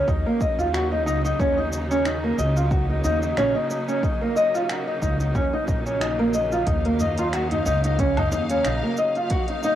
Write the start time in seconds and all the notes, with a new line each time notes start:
Already playing: C#3 F#3 A#3 D#4
0.08 D#2 D#4, kick, cabasa
0.26 A#3
0.41 D#5, kick, cabasa
0.58 D#2 F4, cabasa
0.73 F#4, finger snap, cabasa
0.92 D#4
1.06 C#2 D#4, cabasa
1.25 D#4, cabasa
1.39 D#2 C#4, kick, cabasa
1.58 D#4
1.72 D#4, cabasa
1.91 C#4, cabasa
2.05 D#4, finger snap, cabasa
2.24 A#3
2.38 C#2 D#5, cabasa
2.56 F4, cabasa
2.71 F#4, kick, cabasa
2.90 D#4
3.04 D#2 D#4, cabasa
3.22 D#4, cabasa
3.37 A#1 C#4, finger snap, cabasa
3.55 D#4
3.71 D#4, cabasa
3.88 C#4, cabasa
4.03 D#4, kick, cabasa
4.21 A#3
4.36 D#5, cabasa
4.55 F4, cabasa
4.69 F#4, finger snap, cabasa
4.87 D#4
5.02 C#2 D#4, kick, cabasa
5.20 D#4, cabasa
5.35 D#2 C#4, kick, cabasa
5.53 D#4
5.68 A#1 D#4, kick, cabasa
5.86 C#4, cabasa
6.01 D#4, finger snap, cabasa
6.19 A#3
6.34 D#5, cabasa
6.52 F4, cabasa
6.66 D#2 D#4 F5, kick, closed hi-hat, cabasa
6.85 A#3, closed hi-hat
7.00 D#5, tabla tin, tabla ge, cabasa
7.17 F4, closed hi-hat, tabla na, cabasa
7.33 F#4, finger snap, closed hi-hat, cabasa
7.51 D#4, closed hi-hat, tabla ge
7.66 C#2 D#4, cabasa
7.84 D#4, closed hi-hat, cabasa
7.99 C#4, kick, closed hi-hat, cabasa
8.17 D#4, closed hi-hat, tabla ge, low woodblock
8.32 D#2 D#4, cabasa
8.49 C#4, closed hi-hat, tabla na, tabla tin, cabasa
8.65 A#1 D#4, finger snap, closed hi-hat, cabasa
8.83 A#3
8.97 D#5, tabla tin, cabasa
9.15 F4, closed hi-hat, cabasa
9.30 F#4, kick, closed hi-hat, cabasa
9.48 D#4, closed hi-hat
9.63 D#4, tabla tin, cabasa